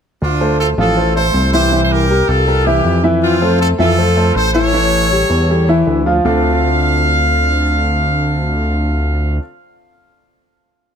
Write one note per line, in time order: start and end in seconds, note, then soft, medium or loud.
0.22 0.74 D2 medium
0.22 0.57 D4 medium
0.22 0.57 F4 medium
0.41 0.71 A3 medium
0.41 0.71 A4 medium
0.41 0.72 C5 medium
0.60 0.69 F4 medium
0.60 0.68 A4 medium
0.78 1.30 A1 medium
0.78 0.94 F3 medium
0.78 0.94 F4 medium
0.78 1.14 F4 medium
0.78 1.14 A4 medium
0.78 0.94 F5 medium
0.96 1.12 A3 medium
0.96 1.12 A4 medium
0.96 1.12 C5 medium
1.15 1.46 A3 medium
1.15 1.47 A4 medium
1.15 1.52 A4 medium
1.15 1.47 C5 medium
1.15 1.51 C5 medium
1.34 2.22 C2 medium
1.53 1.69 E3 medium
1.53 1.69 E4 medium
1.53 1.82 G4 medium
1.53 1.82 C5 loud
1.53 1.69 E5 medium
1.72 2.03 E3 medium
1.72 2.03 E4 medium
1.72 2.03 E5 medium
1.84 1.91 C5 medium
1.91 2.30 G4 medium
1.91 2.29 A#4 medium
2.10 2.41 G3 medium
2.10 2.41 G4 medium
2.10 2.41 A#4 medium
2.28 2.81 C2 loud
2.28 2.67 F4 medium
2.28 2.66 A4 medium
2.47 2.63 G3 medium
2.47 2.63 G4 medium
2.47 2.63 A#4 medium
2.66 2.97 E3 medium
2.66 2.97 E4 medium
2.66 3.05 E4 medium
2.66 3.04 G4 medium
2.66 2.98 E5 medium
2.85 3.73 F2 medium
3.04 3.35 E3 medium
3.04 3.35 E4 medium
3.04 3.35 E5 medium
3.22 3.58 C4 medium
3.22 3.58 F4 medium
3.41 3.72 A3 medium
3.41 3.72 A4 medium
3.41 3.73 C5 medium
3.60 3.70 F4 medium
3.60 3.69 A4 medium
3.79 4.32 F2 medium
3.79 3.95 E3 medium
3.79 3.95 E4 medium
3.79 4.33 F4 medium
3.79 4.32 A4 medium
3.79 3.95 E5 medium
3.98 4.13 A3 medium
3.98 4.14 A4 medium
3.98 4.14 C5 medium
4.16 4.48 A3 medium
4.16 4.48 A4 medium
4.16 4.48 C5 medium
4.35 5.24 A1 medium
4.35 4.55 A4 medium
4.35 4.54 C5 loud
4.54 4.70 E3 medium
4.54 4.70 E4 medium
4.54 5.84 A4 medium
4.54 5.83 C#5 loud
4.54 4.70 E5 medium
4.73 5.04 E3 medium
4.73 5.05 E4 medium
4.73 5.05 E5 medium
5.12 5.43 G3 medium
5.12 5.43 G4 medium
5.12 5.43 A4 medium
5.30 5.83 E2 medium
5.50 5.65 G3 medium
5.50 5.65 G4 medium
5.50 5.66 A4 medium
5.69 6.00 E3 medium
5.69 6.00 E4 medium
5.69 6.00 E5 medium
5.87 6.21 D2 medium
6.06 6.22 F3 medium
6.06 6.22 F4 medium
6.06 6.22 F5 medium
6.25 9.39 D2 loud
6.25 9.39 D3 medium
6.25 9.39 A3 medium
6.25 9.39 C4 medium
6.25 9.40 D4 medium
6.25 9.40 F4 medium
6.25 9.40 A4 medium
6.25 9.40 F5 medium